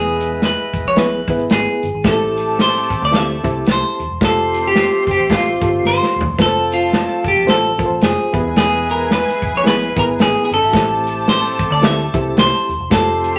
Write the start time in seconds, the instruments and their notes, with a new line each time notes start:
Already playing: fingered electric bass E1, reed electric piano E3 B3 E4 G#4 B4, horn section G#3 B3 E4 B4, clean electric guitar G#4
0.20 closed hi-hat
0.42 clean electric guitar B4, snare, closed hi-hat
0.73 fingered electric bass E1, kick, closed hi-hat
0.85 fingered electric bass A#1, clean electric guitar C#5
0.96 reed electric piano B3 E4 G#4 B4, clean electric guitar B4, snare, closed hi-hat
1.28 fingered electric bass G#1, reed electric piano B3 E4 G#4 B4, kick, closed hi-hat
1.39 closed hi-hat
1.49 fingered electric bass G#1, clean electric guitar G#4, snare, closed hi-hat
1.83 fingered electric bass G1, closed hi-hat
1.94 fingered electric bass G#1
2.04 fingered electric bass A1, reed electric piano A2 C4 E4 G4 G#4, horn section A3 C4 G4 C5, violin section A4 A5, clean electric guitar A4, kick, snare, closed hi-hat
2.12 reed electric piano A4
2.37 closed hi-hat
2.59 clean electric guitar C5, snare, closed hi-hat
2.76 snare
2.90 fingered electric bass A1, kick, closed hi-hat
3.02 fingered electric bass D2, clean electric guitar D5
3.11 reed electric piano C4 E4 G4 A4, snare, closed hi-hat
3.16 clean electric guitar E5
3.44 fingered electric bass C2, reed electric piano C4 E4 G4 A4, kick, closed hi-hat
3.66 fingered electric bass C2, snare, closed hi-hat
3.72 clean electric guitar C5
4.00 fingered electric bass D#1, closed hi-hat
4.11 fingered electric bass E1
4.21 fingered electric bass F1, horn section A3 C4 G4 C5, reed electric piano C4 F4 G4 A4, violin section C5 C6, kick, snare, closed hi-hat
4.25 clean electric guitar A4
4.54 closed hi-hat
4.68 clean electric guitar G4
4.75 snare, closed hi-hat
5.07 fingered electric bass F1, kick, closed hi-hat
5.11 clean electric guitar G4
5.18 fingered electric bass A1
5.30 reed electric piano C4 F4 G4 A4, clean electric guitar F4, kick, snare, closed hi-hat
5.46 closed hi-hat
5.62 fingered electric bass G1, reed electric piano C4 F4 G4 A4, kick, closed hi-hat
5.84 fingered electric bass G1, clean electric guitar C5, snare
6.03 snare
6.16 fingered electric bass D#1
6.21 floor tom
6.27 fingered electric bass E1
6.38 fingered electric bass F1, horn section F3 A3 C4 A4, reed electric piano C4 F4 A4 B4, violin section A4 A5, clean electric guitar A4, kick, snare, closed hi-hat
6.46 reed electric piano C5
6.72 clean electric guitar F4, closed hi-hat
6.93 snare, closed hi-hat
7.24 fingered electric bass F1, clean electric guitar G4, kick, closed hi-hat
7.37 fingered electric bass A#1
7.46 fingered electric bass A1, reed electric piano C4 F4 A4 C5, clean electric guitar A4, snare, closed hi-hat
7.78 reed electric piano C4 F4 A4 A#4, kick, closed hi-hat
7.86 reed electric piano C5
7.90 fingered electric bass A1
8.01 fingered electric bass F1, clean electric guitar G#4, snare, closed hi-hat
8.33 fingered electric bass E1, reed electric piano E3 B3 E4 G4 B4, horn section G#3 B3 E4 B4, violin section G#4 G#5, kick, closed hi-hat
8.40 reed electric piano G#4
8.44 fingered electric bass D#1
8.56 fingered electric bass E1, clean electric guitar G#4, snare, closed hi-hat
8.89 clean electric guitar A#4, closed hi-hat
9.11 clean electric guitar B4, snare, closed hi-hat
9.28 snare
9.42 fingered electric bass E1, kick, closed hi-hat
9.53 fingered electric bass A#1
9.57 clean electric guitar C#5
9.63 reed electric piano B3 E4 G#4 B4, clean electric guitar B4, snare, closed hi-hat
9.96 fingered electric bass G#1, reed electric piano B3 E4 G#4 B4, clean electric guitar A#4, kick, closed hi-hat
10.19 fingered electric bass G#1, clean electric guitar G#4, snare, closed hi-hat
10.26 violin section G#3 G#4
10.35 violin section A#3 A#4
10.44 violin section B3 B4, clean electric guitar G#4
10.51 fingered electric bass G1, violin section C#4 C#5, clean electric guitar A4, closed hi-hat
10.57 violin section D#4 D#5
10.62 fingered electric bass G#1, violin section E4 E5
10.68 violin section F#4 F#5
10.72 fingered electric bass A1, reed electric piano A2 C4 E4 G4 A4, horn section A3 C4 G4 C5, violin section A4 A5, kick, snare, closed hi-hat
11.07 closed hi-hat
11.28 clean electric guitar C5, snare, closed hi-hat
11.45 snare
11.59 fingered electric bass A1, kick, closed hi-hat
11.70 fingered electric bass D2, clean electric guitar D5
11.81 reed electric piano C4 E4 G4 A4, clean electric guitar E5, snare, closed hi-hat
11.99 closed hi-hat
12.14 fingered electric bass C2, reed electric piano C4 E4 G4 A4, kick, closed hi-hat
12.36 fingered electric bass C2, clean electric guitar C5, snare, closed hi-hat
12.69 fingered electric bass D#1, closed hi-hat
12.80 fingered electric bass E1
12.90 fingered electric bass F1, horn section A3 C4 G4 C5, reed electric piano C4 F4 G4 A4, clean electric guitar A4, violin section C5 C6, kick, snare, closed hi-hat
13.24 closed hi-hat